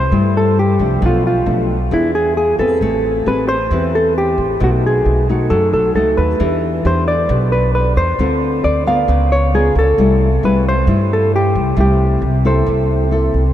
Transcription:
Already playing: nylon-string guitar C3, hollow-body jazz guitar C5
0.12 upright bass G2, nylon-string guitar G2 G3 A3 E4
0.37 hollow-body jazz guitar A4
0.59 hollow-body jazz guitar G4
0.79 upright bass C2, nylon-string guitar F3 A3 D4
1.02 upright bass B1, nylon-string guitar B2, hollow-body jazz guitar F4
1.27 hollow-body jazz guitar F4
1.46 upright bass B1, nylon-string guitar F3 A3 D4
1.91 upright bass E2, nylon-string guitar E3 B3 D4 G#4, hollow-body jazz guitar E4
2.15 hollow-body jazz guitar G#4
2.37 hollow-body jazz guitar G#4
2.59 upright bass E2, nylon-string guitar C4 G4 B4, hollow-body jazz guitar A4
2.81 upright bass A1, nylon-string guitar A3
3.26 upright bass A1, nylon-string guitar C4 G4 B4, hollow-body jazz guitar B4
3.48 hollow-body jazz guitar C5
3.71 upright bass E2, nylon-string guitar E3 C4 G4 B4
3.95 hollow-body jazz guitar A4
4.18 hollow-body jazz guitar G4
4.38 upright bass A1
4.60 upright bass B1, nylon-string guitar B2 A3 D#4 F#4, hollow-body jazz guitar F#4
4.86 hollow-body jazz guitar G#4
5.06 upright bass B1
5.29 nylon-string guitar A3 D#4 F#4
5.50 upright bass F#2, nylon-string guitar F#3, hollow-body jazz guitar A4
5.73 upright bass B1, hollow-body jazz guitar A4
5.95 upright bass C#2, nylon-string guitar A3 D#4 F#4, hollow-body jazz guitar A4
6.17 upright bass D#2, hollow-body jazz guitar B4
6.40 upright bass E2, nylon-string guitar E3 D4 G4 B4
6.85 upright bass E2, nylon-string guitar D4 G4 B4, hollow-body jazz guitar C5
7.08 hollow-body jazz guitar D5
7.29 upright bass B1, nylon-string guitar B2 D4 G4 B4
7.52 hollow-body jazz guitar B4
7.75 hollow-body jazz guitar B4
7.96 upright bass E2, hollow-body jazz guitar C5
8.19 upright bass D2, nylon-string guitar D3 C4 F4 A4
8.64 upright bass D2, hollow-body jazz guitar D5
8.86 nylon-string guitar B3 F4 A#4, hollow-body jazz guitar F5
9.08 upright bass C#2, nylon-string guitar C#3
9.32 hollow-body jazz guitar C#5
9.54 nylon-string guitar B3 F4 A#4, hollow-body jazz guitar G#4
9.75 upright bass C#2, hollow-body jazz guitar A4
9.98 upright bass C2, nylon-string guitar C3 G3 A3 E4
10.43 upright bass C2, nylon-string guitar G3 A3 E4, hollow-body jazz guitar B4
10.69 hollow-body jazz guitar C5
10.87 upright bass G2, nylon-string guitar G2 G3 A3 E4
11.13 hollow-body jazz guitar A4
11.36 hollow-body jazz guitar G4
11.55 upright bass C2
11.77 upright bass C2, nylon-string guitar C3 G3 A3 E4, hollow-body jazz guitar G4
12.22 upright bass C2
12.45 nylon-string guitar A#3 E4 A4, hollow-body jazz guitar C5
12.66 upright bass C2, nylon-string guitar C3
13.11 nylon-string guitar A#3 E4 A4
13.34 upright bass C2

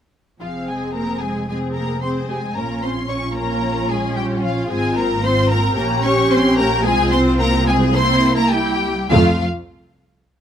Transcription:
0.40 double bass section F1, cello section F3, viola section C4 G#4, violin section F4 F5
0.67 cello section G#3, violin section G#4 G#5
0.93 cello section A#3, violin section A#4 A#5
1.20 cello section G#3, violin section G#4 G#5
1.49 cello section G#3, viola section C4 G#4, violin section G#4 G#5
1.74 cello section A#3, violin section A#4 A#5
2.01 cello section C4, viola section C4 G#4, violin section C5 C6
2.29 cello section G#3, viola section G4, violin section G#4 G#5
2.56 double bass section A#1, cello section A#3, viola section C#4 F4, violin section A#4 A#5
2.82 cello section C4, violin section C5 C6
3.08 cello section C#4, viola section C#4 F4, violin section C#5 C#6
3.35 cello section A#3, violin section A#4 A#5
3.90 cello section G#3, violin section G#4 G#5
4.15 cello section G3, violin section G4 G5
4.42 cello section F3, violin section F4 F5
4.69 double bass section G#1, cello section G#3, viola section C4 F4, violin section G#4 G#5
4.96 cello section A#3, violin section A#4 A#5
5.23 cello section C4, viola section C4 F4, violin section C5 C6
5.49 cello section A#3, violin section A#4 A#5
5.76 double bass section A#1, cello section A#3, viola section C#4 G4, violin section A#4 A#5
6.02 cello section C#4, violin section C#5 C#6
6.30 cello section C4, violin section C5 C6
6.56 cello section A#3, violin section A#4 A#5
6.84 double bass section C2, cello section G#3, viola section C4 F4, violin section G#4 G#5
7.12 cello section C4, violin section C5 C6
7.39 cello section A#3, violin section A#4 A#5
7.67 cello section G#3, violin section G#4 G#5
7.95 viola section A#3 E4, cello section C4, violin section C5 C6
8.37 cello section A#3, violin section A#4 A#5
8.51 cello section G3, viola section A#3 E4, violin section G4 G5
9.10 double bass section F2, cello section F3, viola section A3 F4, violin section F4 F5

